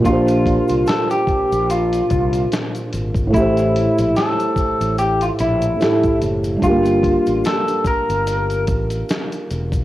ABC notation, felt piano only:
X:1
M:4/4
L:1/8
Q:"Swing 16ths" 1/4=73
K:Aphr
V:1 name="Felt piano"
[B,,B,DGc]8 | [A,,A,EGc]6 [A,,A,EGA]2 | [G,B,DFG]8 |]